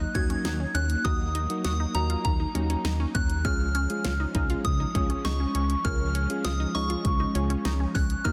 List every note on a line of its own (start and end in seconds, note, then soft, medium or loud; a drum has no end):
0.00 3.41 F#3 medium
0.00 3.41 A#3 medium
0.00 0.11 D#4 medium
0.00 1.02 D#4 medium
0.00 0.16 F#6 loud
0.15 0.36 D#2 medium
0.15 0.60 F#3 medium
0.15 0.60 A#3 medium
0.15 0.26 C#4 medium
0.15 0.60 D#4 medium
0.15 0.60 F#4 medium
0.15 0.71 G#6 loud
0.15 kick medium
0.15 closed hi-hat medium
0.30 0.41 C#4 medium
0.30 closed hi-hat medium
0.45 0.66 D#2 loud
0.45 0.56 D#4 medium
0.45 snare loud
0.45 closed hi-hat medium
0.60 0.71 C#4 medium
0.75 0.96 D#2 loud
0.75 0.97 C#4 medium
0.75 1.06 F#6 loud
0.75 closed hi-hat medium
0.90 closed hi-hat medium
1.04 1.47 D#2 loud
1.04 1.28 F#3 medium
1.04 1.28 A#3 medium
1.04 1.27 D#4 medium
1.04 3.43 D#4 medium
1.04 1.27 D#4 loud
1.04 1.28 F#4 medium
1.04 1.64 D#6 loud
1.04 kick loud
1.04 closed hi-hat medium
1.35 1.57 D#4 medium
1.35 closed hi-hat medium
1.50 1.73 F#3 medium
1.50 1.73 A#3 medium
1.50 1.72 D#4 medium
1.50 1.73 F#4 medium
1.50 closed hi-hat medium
1.65 1.86 D#2 loud
1.65 1.76 F#4 medium
1.65 1.96 D#6 loud
1.65 snare loud
1.65 closed hi-hat medium
1.80 1.91 D#4 medium
1.95 2.16 D#2 loud
1.95 2.25 F#3 medium
1.95 2.25 A#3 medium
1.95 2.25 D#4 medium
1.95 2.06 D#4 medium
1.95 2.25 F#4 medium
1.95 2.23 A#5 medium
1.95 closed hi-hat medium
2.10 2.32 F4 medium
2.10 closed hi-hat medium
2.25 2.46 D#2 loud
2.25 3.17 A#5 loud
2.25 kick medium
2.25 closed hi-hat medium
2.40 2.51 D#4 medium
2.55 2.76 D#2 loud
2.55 3.00 F#3 medium
2.55 3.00 A#3 medium
2.55 2.66 C#4 medium
2.55 3.00 D#4 medium
2.55 3.00 F#4 medium
2.55 closed hi-hat medium
2.70 2.81 C#4 medium
2.70 closed hi-hat medium
2.85 3.06 D#2 loud
2.85 2.96 D#4 medium
2.85 snare loud
2.85 closed hi-hat medium
3.00 3.11 C#4 medium
3.15 3.46 D#2 loud
3.15 3.37 C#4 medium
3.15 3.46 F#6 loud
3.15 kick loud
3.15 closed hi-hat medium
3.30 closed hi-hat medium
3.45 3.87 C#2 loud
3.45 8.21 F3 medium
3.45 8.21 G#3 medium
3.45 3.68 G#3 medium
3.45 8.21 C#4 medium
3.45 3.67 C#4 loud
3.45 3.68 C#4 medium
3.45 3.68 F4 medium
3.45 3.68 G#4 medium
3.45 3.73 F6 loud
3.45 kick loud
3.45 closed hi-hat medium
3.75 3.97 C#4 medium
3.75 4.67 F6 loud
3.75 closed hi-hat medium
3.90 4.13 G#3 medium
3.90 4.13 C#4 medium
3.90 4.13 F4 medium
3.90 4.13 G#4 medium
3.90 closed hi-hat medium
4.05 4.26 C#2 loud
4.05 4.16 F4 medium
4.05 snare loud
4.05 closed hi-hat medium
4.20 4.31 D#4 medium
4.35 4.56 C#2 loud
4.35 4.65 G#3 medium
4.35 4.65 C#4 medium
4.35 4.46 D#4 medium
4.35 4.65 F4 medium
4.35 4.65 G#4 medium
4.35 kick medium
4.35 closed hi-hat medium
4.50 4.72 F4 medium
4.50 closed hi-hat medium
4.65 4.86 C#2 loud
4.65 5.27 D#6 loud
4.65 kick medium
4.65 closed hi-hat medium
4.80 4.91 D#4 medium
4.95 5.16 C#2 loud
4.95 5.40 G#3 medium
4.95 5.40 C#4 medium
4.95 5.06 C#4 medium
4.95 5.40 F4 medium
4.95 5.40 G#4 medium
4.95 kick medium
4.95 closed hi-hat medium
5.10 5.21 C#4 medium
5.10 closed hi-hat medium
5.25 5.46 C#2 loud
5.25 5.36 D#4 medium
5.25 5.87 C#6 loud
5.25 snare loud
5.25 closed hi-hat medium
5.40 5.51 C#4 medium
5.55 5.76 C#2 loud
5.55 5.77 C#4 medium
5.55 closed hi-hat medium
5.70 closed hi-hat medium
5.85 6.27 C#2 loud
5.85 6.08 G#3 medium
5.85 6.07 C#4 loud
5.85 6.08 C#4 medium
5.85 6.08 F4 medium
5.85 6.08 A#4 medium
5.85 6.47 F6 loud
5.85 kick loud
5.85 closed hi-hat medium
6.15 6.37 C#4 medium
6.15 closed hi-hat medium
6.30 6.53 G#3 medium
6.30 6.52 C#4 medium
6.30 6.52 F4 medium
6.30 6.52 G#4 medium
6.30 closed hi-hat medium
6.45 6.66 C#2 loud
6.45 6.56 F4 medium
6.45 6.76 D#6 medium
6.45 snare loud
6.45 closed hi-hat medium
6.60 6.71 D#4 medium
6.75 6.96 C#2 medium
6.75 7.05 G#3 medium
6.75 7.05 C#4 medium
6.75 6.86 D#4 medium
6.75 7.05 F4 medium
6.75 7.05 G#4 medium
6.75 7.98 C#6 loud
6.75 open hi-hat medium
6.90 7.12 F4 medium
6.90 closed hi-hat medium
7.05 7.26 C#2 loud
7.05 kick medium
7.05 closed hi-hat medium
7.20 7.31 D#4 medium
7.35 7.56 C#2 loud
7.35 7.80 G#3 medium
7.35 7.80 C#4 medium
7.35 7.46 C#4 medium
7.35 7.80 F4 medium
7.35 7.80 G#4 medium
7.35 closed hi-hat medium
7.50 7.61 C#4 medium
7.50 closed hi-hat medium
7.65 7.86 C#2 loud
7.65 7.76 D#4 medium
7.65 snare loud
7.65 closed hi-hat medium
7.80 7.91 C#4 medium
7.95 8.16 C#2 loud
7.95 8.17 C#4 medium
7.95 8.26 F#6 medium
7.95 kick loud
7.95 open hi-hat medium
8.10 closed hi-hat medium
8.24 8.32 D#2 loud
8.24 8.32 F#3 medium
8.24 8.32 A#3 medium
8.24 8.32 D#4 medium
8.24 8.32 D#4 loud
8.24 8.32 D#4 medium
8.24 8.32 F#4 medium
8.24 8.32 A#4 medium
8.24 8.32 F6 loud
8.24 kick loud
8.24 closed hi-hat medium